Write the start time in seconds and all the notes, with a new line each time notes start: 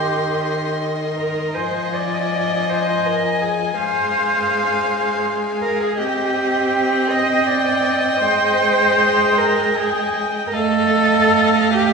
Already playing: D#3 G4 D#5 C6
1.15 A#4
1.54 F3 C5 D#5 G#5
1.94 D5
2.69 C5
3.06 A#4
3.42 G#4
3.78 G#3 C5 F5
5.62 A#4
5.81 G#4
5.99 C4 G4 D#5 G5
7.10 D#5
7.47 D5
8.20 G#3 C5
9.38 A#4
9.78 G#4
10.47 A#4
10.52 A3 A4 D#5 F5
11.74 G4